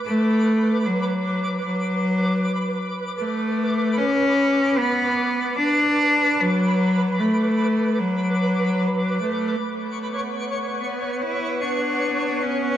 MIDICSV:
0, 0, Header, 1, 4, 480
1, 0, Start_track
1, 0, Key_signature, 2, "minor"
1, 0, Tempo, 500000
1, 12260, End_track
2, 0, Start_track
2, 0, Title_t, "Synth texture"
2, 0, Program_c, 0, 99
2, 0, Note_on_c, 0, 71, 69
2, 0, Note_on_c, 0, 86, 73
2, 9198, Note_on_c, 0, 85, 79
2, 9205, Note_on_c, 0, 73, 77
2, 9237, Note_off_c, 0, 71, 0
2, 9239, Note_off_c, 0, 86, 0
2, 12260, Note_off_c, 0, 73, 0
2, 12260, Note_off_c, 0, 85, 0
2, 12260, End_track
3, 0, Start_track
3, 0, Title_t, "Synth drone"
3, 0, Program_c, 1, 95
3, 9233, Note_on_c, 1, 59, 74
3, 12260, Note_off_c, 1, 59, 0
3, 12260, End_track
4, 0, Start_track
4, 0, Title_t, "Cello"
4, 0, Program_c, 2, 42
4, 45, Note_on_c, 2, 57, 101
4, 816, Note_on_c, 2, 54, 82
4, 830, Note_off_c, 2, 57, 0
4, 1556, Note_off_c, 2, 54, 0
4, 1573, Note_on_c, 2, 54, 83
4, 2658, Note_off_c, 2, 54, 0
4, 3054, Note_on_c, 2, 57, 82
4, 3816, Note_on_c, 2, 61, 96
4, 3831, Note_off_c, 2, 57, 0
4, 4588, Note_on_c, 2, 59, 90
4, 4602, Note_off_c, 2, 61, 0
4, 5350, Note_off_c, 2, 59, 0
4, 5355, Note_on_c, 2, 62, 95
4, 6144, Note_on_c, 2, 54, 94
4, 6158, Note_off_c, 2, 62, 0
4, 6900, Note_on_c, 2, 57, 78
4, 6915, Note_off_c, 2, 54, 0
4, 7672, Note_on_c, 2, 54, 80
4, 7687, Note_off_c, 2, 57, 0
4, 8832, Note_off_c, 2, 54, 0
4, 8837, Note_on_c, 2, 57, 97
4, 10378, Note_on_c, 2, 59, 91
4, 10393, Note_off_c, 2, 57, 0
4, 10771, Note_on_c, 2, 64, 106
4, 10786, Note_off_c, 2, 59, 0
4, 11140, Note_on_c, 2, 62, 96
4, 11154, Note_off_c, 2, 64, 0
4, 11924, Note_on_c, 2, 61, 106
4, 11938, Note_off_c, 2, 62, 0
4, 12260, Note_off_c, 2, 61, 0
4, 12260, End_track
0, 0, End_of_file